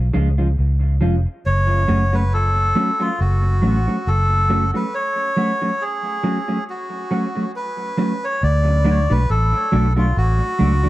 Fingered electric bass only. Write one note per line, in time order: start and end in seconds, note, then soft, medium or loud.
0.00 0.13 B1 medium
0.15 0.55 C#2 medium
0.59 0.99 C#2 medium
1.02 1.25 F1 medium
1.46 1.86 F#1 medium
1.89 2.72 F#1 medium
3.21 3.61 F#1 loud
3.64 3.86 A1 medium
4.07 4.71 F#1 medium
8.43 9.06 D2 loud
9.11 9.28 B1 medium
9.30 9.52 A1 medium
9.73 10.13 B1 medium
10.17 10.39 A1 medium
10.61 10.83 C#2 medium
10.85 10.89 D2 medium